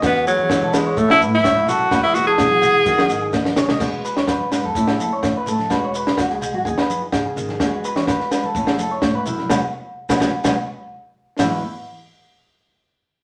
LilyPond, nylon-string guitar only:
\new Staff \with { instrumentName = "Nylon-string guitar" } { \clef bass \time 4/4 \key e \major \tempo 4 = 126 << { r8 b8 gis8 b8 r8 cis'4. | <e gis b>8 b2 dis'8 dis'8 gis'8 | <gis b fis'>2 <a cis' e'>4. a8 | <gis b fis'>4. gis8 <dis' gis'>2 |
<gis b fis'>4. gis8 <a cis' e'>2 | <fis gis b>16 r4 <fis gis b>16 <fis gis b>16 r16 <fis gis b>16 r4. r16 | <e gis b fis'>8 r2. r8 | } \\ { e,4 e4 a,4 gis,8 fis,8 | e,4 b,8 r8 dis4 b4 | e,4 fis,8 gis,8 a,4 e4 | e,4 e4 dis4 cis8 dis8 |
e,4 e4 a,4 gis,8 fis,8 | r1 | e,8 r2. r8 | } >> }